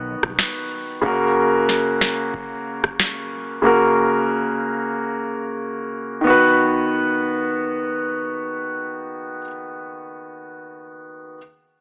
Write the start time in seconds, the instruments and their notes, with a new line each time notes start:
Already playing: fretless electric bass B1, grand piano D#3 B3 F#4 B4
0.23 fretless electric bass B1, kick, cross-stick
0.39 finger snap, snare
1.02 grand piano C#3 A#3 F#4, kick
1.06 grand piano A#4
1.69 snare
2.01 finger snap, snare
2.34 kick
2.84 kick, cross-stick
3.00 finger snap, snare
3.62 grand piano C#3 A#3 F#4
3.66 grand piano A#4
6.21 grand piano D#3 B3
6.27 grand piano F#4 B4